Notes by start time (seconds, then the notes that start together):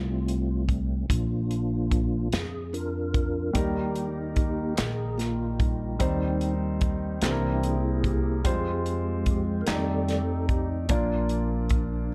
Already playing: C2 G3 A3 C4 F4
0.28 closed hi-hat
0.69 kick, closed hi-hat
1.09 A#1 F3 A#3 D4 F4, kick, closed hi-hat
1.51 closed hi-hat
1.91 kick, closed hi-hat
2.32 F2 G#4, snare, closed hi-hat
2.73 D4 F4 A#4, closed hi-hat
3.14 kick, closed hi-hat
3.53 D#2 D#3 G3 A#3 D#4 G4 A#4, kick, closed hi-hat
3.96 closed hi-hat
4.36 kick, closed hi-hat
4.76 A#1 G#4, snare, clap, closed hi-hat
5.18 A#3 F4, snare, closed hi-hat
5.60 G3 A#3 D#4, kick, closed hi-hat
5.99 D#2 D#3 G3 C4 D#4 C5, kick, closed hi-hat
6.41 closed hi-hat
6.81 kick, closed hi-hat
7.22 C2 C3 E3 G3 A#3 C4 D4 E4 G4 A4, snare, clap, closed hi-hat
7.31 A#4
7.63 G#4, closed hi-hat
8.04 C4 G4 G#4, kick, closed hi-hat
8.44 F2 F3 G3 G#3 C4 F4 C5, kick, closed hi-hat
8.50 G#3
8.86 closed hi-hat
9.26 kick, closed hi-hat
9.30 G4
9.61 A#4
9.66 F2 D#3 G3 A3 C4 D#4 G4 A4 D5, snare, clap, closed hi-hat
10.08 snare, closed hi-hat
10.49 G4, kick, closed hi-hat
10.89 A#1 A#2 F3 A#3 D4 F4 D5, kick, closed hi-hat
11.29 closed hi-hat
11.69 kick, closed hi-hat